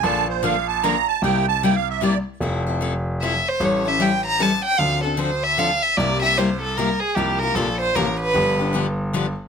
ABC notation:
X:1
M:3/4
L:1/8
Q:"Swing" 1/4=152
K:F
V:1 name="Accordion"
a c f a b a | g a (3g f e d z | z6 | z6 |
z6 | z6 | z6 | z6 |]
V:2 name="Violin"
z6 | z6 | z4 e c | ^c e g b a g |
f A c e f e | d e c A B _A | G B A c B =B- | =B2 z4 |]
V:3 name="Steel-string acoustic guitar"
[D,F,B,DA] z [D,F,B,DA] z [D,F,B,DA] z | [C,G,B,EG] z [C,G,B,EG] z [C,G,B,EG] z | [F,CEA] [CEA] [F,CEA] z [F,CEA] z | [E,G,^CEA] [CEA] [E,G,CEA] z [E,G,CEA] z |
[D,F,CDA] [CDA] [D,F,CDA] z [D,F,CDA] z | [C,G,B,EG] [B,EG] [C,G,B,EG] z [C,G,B,EG] z | [C,F,B,FG] [B,FG] [C,F,B,FG] z [C,F,B,FG] z | [D,F,=B,DG] [B,DG] [D,F,B,DG] z [D,F,B,DG] z |]
V:4 name="Grand piano" clef=bass
B,,,6 | C,,6 | F,,,6 | A,,,6 |
D,,6 | C,,6 | C,,2 B,,,2 A,,,2 | G,,,6 |]